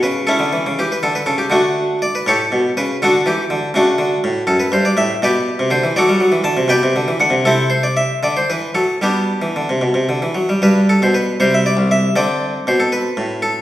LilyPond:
<<
  \new Staff \with { instrumentName = "Harpsichord" } { \time 6/8 \key d \major \tempo 4. = 80 b'8 <cis' e' a'>4 g'16 b'16 a'16 b'16 a'16 g'16 | <a d' fis'>4 d''16 b'16 <g' a' cis''>4 b'8 | <d' fis' a'>8 g'4 <a d' fis'>4. | \key g \major a'16 b'16 c''16 d''16 e''8 <g' b' d''>4 c''8 |
<fis' a' d''>4 a''8 <b' d'' g''>4 fis''8 | <c' e' a'>8 c''16 d''16 e''8 d''16 c''16 b'8 a'8 | <b d' g'>2~ <b d' g'>8 r8 | b'8 a'16 c''16 b'8 c''16 e''16 d''8 e''8 |
d''4 c''16 a'16 b'4 a'8 | }
  \new Staff \with { instrumentName = "Harpsichord" } { \clef bass \time 6/8 \key d \major << { r2. | r2. | r2. | \key g \major r2. |
r2. | r2. | r2. | g4. g4. |
c'2. | } \\ { cis8. d16 e16 cis16 e8 d8 cis8 | d4. a,8 b,8 cis8 | d8 e8 d8 cis8 d8 a,8 | fis,8 g,8 a,8 b,8. c16 d16 e16 |
fis16 g16 fis16 e16 d16 c16 b,16 c16 d16 e16 d16 c16 | c4. d8 e8 fis8 | g8. e16 d16 c16 b,16 c16 d16 e16 fis16 g16 | g,8. b,8. c8. c,8. |
d4 b,4 a,4 | } >> }
>>